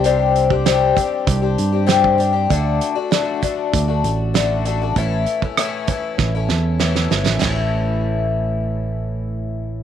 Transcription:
<<
  \new Staff \with { instrumentName = "Twelve-string acoustic guitar" } { \time 4/4 \key a \mixolydian \tempo 4 = 98 <c g c' d' g'>8. <c' d' g'>16 <c g c' d' g'>8 <g c' d' g'>8. <c' d' g'>8 <c' d' g'>16 <c g c' d' g'>8 <g c' d' g'>16 <c' d' g'>16 | <d a d' fis'>8. <a d' fis'>16 <d a d' fis'>8 <d a d' fis'>8. <a d' fis'>8. <d a d' fis'>8 <d a d' fis'>16 <a d' fis'>16 | <a, e a cis' e'>8. <a cis' e'>16 <a, e a cis' e'>8 <e a cis' e'>8. <a cis' e'>8. <a, e a cis' e'>8 <e a cis' e'>16 <a cis' e'>16 | <a, e a cis' e'>1 | }
  \new Staff \with { instrumentName = "Fingered electric bass" } { \clef bass \time 4/4 \key a \mixolydian c,4. r8 c,8 g,4. | d,8 r4. d,8 a,,4. | a,,8 r4. a,,8 e,4 g,,16 a,,16 | a,,1 | }
  \new DrumStaff \with { instrumentName = "Drums" } \drummode { \time 4/4 hh8 hh16 bd16 <hh sn>8 <hh bd>8 <hh bd>8 hh8 <hh sn>16 bd16 hh8 | <hh bd>8 hh8 <hh sn>8 <hh bd>8 <hh bd>8 hh8 <hh sn>8 hh8 | <hh bd>8 hh16 bd16 <hh ss>8 <hh bd>8 <bd sn>8 sn8 sn16 sn16 sn16 sn16 | <cymc sn tomfh>4 r4 r4 r4 | }
>>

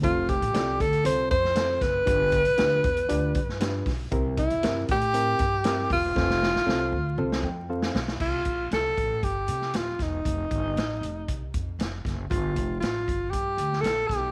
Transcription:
<<
  \new Staff \with { instrumentName = "Tenor saxophone" } { \time 4/4 \key f \major \tempo 4 = 117 f'8 g'4 a'8 c''8 c''4 b'8~ | b'2.~ b'8 r8 | r8 e'4 g'2 f'8~ | f'2. r4 |
f'4 a'4 g'4 f'8 ees'8~ | ees'2~ ees'8 r4. | f'4 f'4 g'4 a'8 g'8 | }
  \new Staff \with { instrumentName = "Reed electric piano" } { \time 4/4 \key f \major << { r1 | g,4. r2 r8 | c4. r2 r8 | r2 r8 g''8 f''4 |
r1 | r1 | r1 | } \\ { <c' f' a' c''>8 r8 <c' f' a' d''>8 r8 <c' f' a' c''>8 r8 <c' f' a' c''>8 r8 | <d' f' g' b'>8 r8 <d' f' g' b'>8 r8 <d' f' g' d''>8 r8 <d' f' g' b'>8 r8 | <c' e' g' bes'>8 r8 <c' e' g' bes'>8 r8 <c' e' g' bes'>8 r8 <c' e' g' bes'>8 r8 | <c' f' a' c''>8 r8 <c' f' a' c''>8 r8 <c' f' a' c''>8 r8 <c' f' a' c''>8 r8 |
r1 | r1 | r1 | } >> }
  \new Staff \with { instrumentName = "Upright bass" } { \clef bass \time 4/4 \key f \major f,,8. a,,16 c,8 d,8 c,8 f,4 ges,,8 | g,,8. b,,16 d,8 e,8 d,8 g,4 b,,8 | c,8. e,16 g,8 a,4 g,4 e,,8 | f,,8. a,,16 c,8 d,8 c,8 f,4 b,,8 |
c,8 bes,,8 c,8 a,,8 g,,8 c8 ees,,8 e,,8 | f,,8 g,,8 a,,8 f,,8 c,8 f,8 f,,8 ges,,8 | g,,8 f,,8 a,,8 g,,8 g,8 d,8 bes,,8 b,,8 | }
  \new DrumStaff \with { instrumentName = "Drums" } \drummode { \time 4/4 <hh bd>8 <hh bd>16 hh16 <hh sn>8 <hh bd>16 hh16 hh8 <hh bd>16 sn16 <hh sn>8 <hh bd sn>8 | <hh bd>8 <hh bd>16 hh16 <hh sn>8 <hh bd>16 hh16 hh8 <hh bd>16 sn16 <hh sn>8 <hho bd sn>8 | <hh bd>8 <hh bd>16 hh16 <hh sn>8 <hh bd>16 hh16 hh8 <hh bd>8 <hh sn>8 <hho bd>8 | <bd sn>16 sn16 sn16 sn16 sn4 r16 sn8. r16 sn16 sn16 sn16 |
<cymc bd>8 <hh bd>8 <hh sn>8 <hh bd>8 <hh bd>8 hh16 sn16 <hh sn>8 <hh bd sn>8 | <hh bd>8 <hh bd>8 <hh sn>8 hh8 <hh bd>8 <hh bd>8 <hh sn>8 <hh bd sn>8 | <hh bd>8 <hh bd>8 <hh sn>8 <hh bd>8 <hh bd>8 hh16 sn16 <hh sn>8 <hh bd sn>8 | }
>>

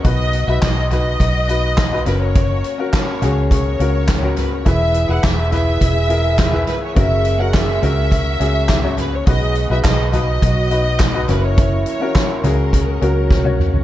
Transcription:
<<
  \new Staff \with { instrumentName = "Violin section" } { \time 4/4 \key fis \mixolydian \tempo 4 = 104 dis''8. e''16 dis''8 dis''2 b'16 cis''16~ | cis''4 cis''4 cis''4. b'16 cis''16 | e''8. fis''16 e''8 e''2 b'16 cis''16 | e''8. fis''16 e''8 e''2 b'16 cis''16 |
dis''8. e''16 dis''8 dis''2 b'16 cis''16~ | cis''8 cis''4 ais'2 r8 | }
  \new Staff \with { instrumentName = "Upright piano" } { \time 4/4 \key fis \mixolydian <dis' fis' b'>8. <dis' fis' b'>8. <dis' fis' b'>8. r16 <dis' fis' b'>8. <dis' fis' b'>16 <cis' fis' ais'>8~ | <cis' fis' ais'>8 r16 <cis' fis' ais'>8. <cis' fis' gis'>8. r16 <cis' fis' ais'>8. <cis' fis' ais'>8. | <e' gis' b'>8. <e' gis' b'>8. <e' gis' b'>8. r16 <e' gis' ais'>8. <e' gis' b'>8. | <cis' fis' ais'>8. <cis' fis' ais'>8. <cis' fis' ais'>8. r16 <cis' fis' gis'>8. <cis' fis' cis''>8. |
<dis' fis' b'>8. <dis' fis' b'>8. <dis' fis' b'>8. r16 <dis' fis' b'>8. <dis' fis' b'>16 <cis' fis' ais'>8~ | <cis' fis' ais'>8 r16 <cis' fis' ais'>8. <cis' fis' gis'>8. r16 <cis' fis' ais'>8. <cis' fis' cis''>8. | }
  \new Staff \with { instrumentName = "Upright piano" } { \clef bass \time 4/4 \key fis \mixolydian b,4. r2 r8 | r1 | e4. r2 r8 | r1 |
b,4. r2 r8 | r1 | }
  \new Staff \with { instrumentName = "Tonewheel organ" } { \time 4/4 \key fis \mixolydian << { fis'1~ | fis'1 | <e b>1 | fis'1~ |
fis'1~ | fis'1 | } \\ { <b dis'>2.~ <b dis'>8 <ais cis'>8~ | <ais cis'>1 | <e' gis'>1 | <ais cis'>1 |
<b dis'>2.~ <b dis'>8 <ais cis'>8~ | <ais cis'>1 | } >> }
  \new Staff \with { instrumentName = "French horn section" } { \time 4/4 \key fis \mixolydian r1 | r1 | <e e'>4. r8 <gis gis'>4. r8 | <gis gis'>2~ <gis gis'>8 r8 <fis fis'>8 r8 |
<gis gis'>4. r8 <fis fis'>4 r8 <e e'>8~ | <e e'>2 r8 <fis fis'>4 r8 | }
  \new Staff \with { instrumentName = "Fingered electric bass" } { \clef bass \time 4/4 \key fis \mixolydian b,,8. b,,16 r4 b,,4. fis,,8~ | fis,,8 r4 cis,4 cis,4. | e,,8. e,,16 e,,4 e,,4. r8 | fis,,4. cis,4 cis,4. |
b,,8. b,,16 b,,4 b,,4. fis,,8~ | fis,,8 r4 cis,4 cis,4. | }
  \new DrumStaff \with { instrumentName = "Drums" } \drummode { \time 4/4 <hh bd>8 hh8 <hc hh bd sn>8 <hh tomfh>8 <hh bd>8 hh8 <hc hh bd sn>16 tomfh16 <hh sn>8 | <hh bd>8 hh8 <hc hh bd sn>8 <hh tomfh>8 <hh bd>8 hh8 <hc hh bd sn>16 tomfh16 <hh sn tomfh>8 | <hh bd>8 hh8 <hc hh bd sn>8 <hh tomfh>8 <hh bd>8 hh8 <hc hh bd sn>16 tomfh16 <hh sn tomfh>8 | <hh bd>8 hh8 <hc hh bd sn>8 <hh tomfh>8 <hh bd>8 hh8 <hc hh bd sn>16 tomfh16 <hh tomfh>8 |
<hh bd>8 hh8 <hc hh bd sn>8 <hh tomfh>8 <hh bd>8 hh8 <hc hh bd sn>16 tomfh16 <hh sn tomfh>8 | <hh bd>8 hh8 <hc hh bd sn>8 <hh tomfh>8 <hh bd>8 hh8 <bd sn>16 tommh16 toml16 tomfh16 | }
>>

